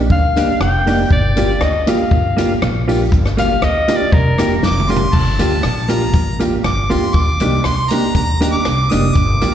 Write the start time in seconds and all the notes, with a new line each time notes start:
0.10 D2 D#4 G4 F5, kick
0.36 A#3 D4 D#4 G4, closed hi-hat, tambourine
0.60 F1 G5, cross-stick
0.86 A#3 D4 D#4 G4, open hi-hat, tambourine
1.10 G1 D5, kick, hi-hat pedal
1.36 A#3 D4 F4 G4, closed hi-hat, tambourine
1.61 D2 D#5, muted clean electric guitar stroke, cross-stick
1.86 A#3 D4 F4 G4 F5, closed hi-hat, tambourine
2.11 G1 F4 G4, kick
2.37 A#3 D4 F4 G4, closed hi-hat, tambourine
2.62 A#1, cross-stick
2.87 A#3 D4 F4 G4, open hi-hat, tambourine
3.12 G1, kick, hi-hat pedal
3.25 cross-stick
3.37 A#3 D4 F4 G4 F5, closed hi-hat, tambourine
3.62 D2 D#5, cross-stick
3.88 A#3 D4 F4 G4, closed hi-hat, tambourine
3.97 D5
4.12 F1 F4 G4 A#4, kick
4.38 A#3 D4 F4 G4, cross-stick, closed hi-hat, tambourine
4.63 F1 D6, snare
4.80 mid tom
4.89 A#3 D4 F4 G4 C6, tambourine
4.96 floor tom
5.13 G1 A5, kick, crash
5.39 D2 A#3 D4 F4 G4, closed hi-hat, tambourine
5.63 A#1, cross-stick, closed hi-hat
5.89 A#3 D4 F4 G4 A#5, closed hi-hat, tambourine
6.14 A1, kick, closed hi-hat
6.39 A#3 D4 F4 G4, closed hi-hat, tambourine
6.64 G1 D6, cross-stick, closed hi-hat
6.90 D2 A#3 D4 F4 G4 C6, open hi-hat, tambourine
7.14 D#2 D6, kick, closed hi-hat
7.40 C2 A#3 D4 D#4 G4, closed hi-hat, tambourine
7.64 D2 C6, cross-stick, closed hi-hat
7.90 A#3 D4 D#4 G4 A#5, closed hi-hat, tambourine
8.15 D#2 A#5, kick, closed hi-hat
8.40 A#3 D4 D#4 G4 A#5, closed hi-hat, tambourine
8.52 D6
8.65 C2, cross-stick, closed hi-hat
8.90 F1 A#3 D4 D#4 G4 D#6, closed hi-hat, tambourine
9.15 G1 D6, kick, closed hi-hat
9.41 A#1 A#3 D4 F4 G4, closed hi-hat, tambourine